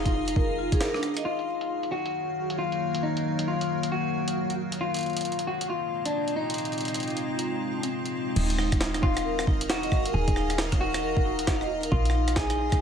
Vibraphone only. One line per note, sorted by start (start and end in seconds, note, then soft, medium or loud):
0.06 0.10 D#4 loud
0.28 0.33 D#4 medium
0.36 0.44 A#4 medium
0.58 0.66 F4 medium
0.72 0.75 G#4 medium
0.81 0.89 A#4 loud
0.95 0.99 D4 loud
1.17 1.20 D#5 loud
8.36 8.44 D#4 medium
8.58 8.66 D#4 loud
8.81 8.89 D#4 loud
8.94 8.99 D#4 loud
9.17 9.21 D#4 medium
9.25 9.33 A#4 medium
9.47 9.59 D#4 medium
9.70 9.77 D#4 medium
9.83 9.88 D#5 medium
10.06 10.13 A#4 medium
10.14 10.22 D#4 medium
10.36 10.44 D#4 loud
10.58 10.66 D#4 loud
10.72 10.77 D#4 medium
10.94 10.99 D#4 medium
11.03 11.11 A#4 medium
11.25 11.37 D#4 medium
11.47 11.55 D#4 medium
11.61 11.66 D#5 medium
11.83 11.91 A#4 medium
11.92 12.00 D#4 medium
12.14 12.22 D#4 loud
12.36 12.44 D#4 loud
12.50 12.55 D#4 loud
12.72 12.77 D#4 medium